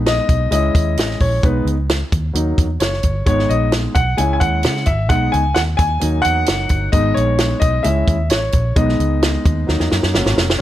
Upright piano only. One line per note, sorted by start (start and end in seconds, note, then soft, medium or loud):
0.00 0.47 G#3 medium
0.00 0.48 B3 medium
0.00 0.48 D#4 medium
0.06 0.50 D#5 loud
0.51 1.39 G#3 medium
0.51 1.39 C#4 soft
0.51 1.40 E4 medium
0.51 1.16 D#5 medium
1.21 1.44 C#5 medium
1.43 1.74 G#3 medium
1.43 1.74 B3 medium
1.43 1.74 D#4 medium
1.43 1.66 B4 medium
2.34 2.65 F#3 medium
2.34 2.65 A#3 soft
2.34 2.66 D#4 medium
2.80 3.25 C#5 medium
3.26 3.92 G#3 medium
3.26 3.92 B3 medium
3.26 3.92 D#4 medium
3.26 3.50 C#5 loud
3.49 3.71 D#5 medium
3.95 4.19 F#5 loud
4.17 4.83 G#3 medium
4.17 4.83 C#4 soft
4.17 4.84 E4 medium
4.17 4.32 G#5 medium
4.33 4.41 G#5 medium
4.40 4.88 F#5 loud
4.86 5.10 E5 medium
5.09 5.40 G#3 medium
5.09 5.41 B3 medium
5.09 5.41 D#4 medium
5.09 5.31 F#5 loud
5.32 5.54 G#5 loud
5.55 5.60 F#5 loud
5.77 6.21 G#5 loud
6.00 6.89 F#3 medium
6.00 6.89 A#3 medium
6.00 6.89 D#4 medium
6.22 6.88 F#5 loud
6.92 7.81 G#3 medium
6.92 7.81 B3 medium
6.92 7.81 D#4 medium
6.92 7.17 D#5 loud
7.14 7.58 C#5 medium
7.60 7.85 D#5 medium
7.83 8.15 G#3 medium
7.83 8.15 C#4 soft
7.83 8.15 E4 medium
7.83 8.31 E5 medium
8.30 8.78 C#5 medium
8.76 9.64 G#3 medium
8.76 9.64 B3 medium
8.76 9.65 D#4 medium
8.76 9.87 D#5 medium
9.67 10.11 F#3 medium
9.67 10.12 A#3 medium
9.67 10.12 D#4 medium
10.14 10.44 F#3 medium
10.14 10.45 A#3 medium
10.14 10.45 C#4 medium